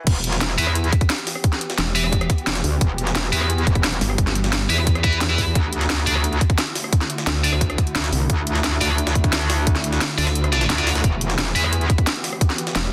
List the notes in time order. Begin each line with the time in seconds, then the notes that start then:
0.07 E1 E3 B3 F#4 G4, kick, closed hi-hat, crash
0.24 closed hi-hat
0.33 snare, closed hi-hat
0.41 snare, closed hi-hat
0.50 snare
0.58 E2 E4 B4 E5, closed hi-hat, open hi-hat
0.67 cross-stick
0.75 closed hi-hat
0.84 closed hi-hat
0.93 kick, closed hi-hat
1.01 kick, closed hi-hat
1.10 snare, closed hi-hat
1.18 closed hi-hat
1.27 snare, closed hi-hat, open hi-hat
1.35 cross-stick
1.44 kick, closed hi-hat
1.53 snare, closed hi-hat
1.61 closed hi-hat
1.70 snare, closed hi-hat
1.78 E1, snare, closed hi-hat
1.87 snare
1.95 E4 B4 E5, open hi-hat
2.04 cross-stick
2.13 kick, closed hi-hat
2.21 cross-stick, closed hi-hat
2.30 kick, closed hi-hat
2.38 closed hi-hat
2.47 E1, snare, closed hi-hat
2.55 snare, closed hi-hat
2.64 D2, closed hi-hat, open hi-hat
2.81 E1, kick, closed hi-hat
2.98 closed hi-hat
3.07 snare, closed hi-hat
3.15 snare, closed hi-hat
3.24 snare
3.32 E2 E4 B4 E5, closed hi-hat, open hi-hat
3.41 cross-stick
3.50 closed hi-hat
3.58 closed hi-hat
3.67 E1, kick, closed hi-hat
3.75 kick, closed hi-hat
3.84 snare, closed hi-hat
3.93 closed hi-hat
4.01 G1, snare, closed hi-hat, open hi-hat
4.10 cross-stick
4.18 G1, kick, closed hi-hat
4.27 snare, closed hi-hat
4.35 closed hi-hat
4.44 snare, closed hi-hat
4.53 snare, closed hi-hat
4.61 snare
4.69 E2 E4 B4 E5, open hi-hat
4.78 cross-stick
4.87 kick, closed hi-hat
4.95 cross-stick, closed hi-hat
5.04 E4 B4 E5, kick, closed hi-hat
5.13 closed hi-hat
5.21 snare, closed hi-hat
5.30 E4 B4 E5, closed hi-hat
5.38 kick, closed hi-hat, open hi-hat
5.55 D2 D3 A3 E4, kick, closed hi-hat
5.73 closed hi-hat
5.81 snare, closed hi-hat
5.90 snare, closed hi-hat
5.98 snare
6.07 D2 D4 A4 D5, closed hi-hat, open hi-hat
6.15 cross-stick
6.24 closed hi-hat
6.33 closed hi-hat
6.41 kick, closed hi-hat
6.50 kick, closed hi-hat
6.58 snare, closed hi-hat
6.67 closed hi-hat
6.75 snare, closed hi-hat, open hi-hat
6.84 cross-stick
6.93 kick, closed hi-hat
7.01 snare, closed hi-hat
7.10 closed hi-hat
7.18 snare, closed hi-hat
7.27 D2, snare, closed hi-hat
7.35 snare
7.44 D4 A4 D5, open hi-hat
7.53 cross-stick
7.61 kick, closed hi-hat
7.70 cross-stick, closed hi-hat
7.78 kick, closed hi-hat
7.87 closed hi-hat
7.95 D2, snare, closed hi-hat
8.04 snare, closed hi-hat
8.13 C2, closed hi-hat, open hi-hat
8.30 D2, kick, closed hi-hat
8.47 closed hi-hat
8.55 snare, closed hi-hat
8.64 snare, closed hi-hat
8.73 snare
8.81 D2 D4 A4 D5, snare, closed hi-hat, open hi-hat
8.98 closed hi-hat
9.07 snare, closed hi-hat
9.15 D2, kick, closed hi-hat
9.24 kick, closed hi-hat
9.33 snare, closed hi-hat
9.41 closed hi-hat
9.50 snare, closed hi-hat, open hi-hat
9.67 kick, closed hi-hat
9.75 snare, closed hi-hat
9.84 closed hi-hat
9.93 snare, closed hi-hat
10.01 snare, closed hi-hat
10.10 snare
10.18 D2 D4 A4 D5, closed hi-hat, open hi-hat
10.27 cross-stick, snare, closed hi-hat
10.35 closed hi-hat
10.44 cross-stick, closed hi-hat
10.52 D4 A4 D5, snare, closed hi-hat
10.61 snare, closed hi-hat
10.70 D2, snare, closed hi-hat
10.78 D4 A4 D5, snare, closed hi-hat
10.87 snare, closed hi-hat, open hi-hat
10.95 snare, closed hi-hat
11.04 E1 E3 B3 F#4 G4, kick, closed hi-hat
11.21 closed hi-hat
11.30 snare, closed hi-hat
11.38 snare, closed hi-hat
11.47 snare
11.55 E2 E4 B4 E5, closed hi-hat, open hi-hat
11.64 cross-stick
11.73 closed hi-hat
11.81 closed hi-hat
11.90 kick, closed hi-hat
11.98 kick, closed hi-hat
12.07 snare, closed hi-hat
12.16 closed hi-hat
12.24 snare, closed hi-hat, open hi-hat
12.33 cross-stick
12.41 kick, closed hi-hat
12.50 snare, closed hi-hat
12.58 closed hi-hat
12.67 snare, closed hi-hat
12.75 E1, snare, closed hi-hat
12.84 snare